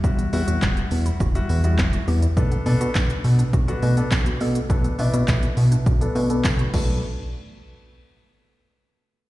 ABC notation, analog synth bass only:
X:1
M:4/4
L:1/16
Q:1/4=103
K:Bm
V:1 name="Analog synth bass" clef=bass
E,,,2 E,, E,, E,,,2 E,,2 E,,,2 E,,2 E,,,2 E,,2 | B,,,2 B,, B,, B,,,2 B,,2 B,,,2 B,,2 B,,,2 B,,2 | B,,,2 B,, B,, B,,,2 B,,2 B,,,2 B,,2 B,,,2 B,,,2 | z16 |]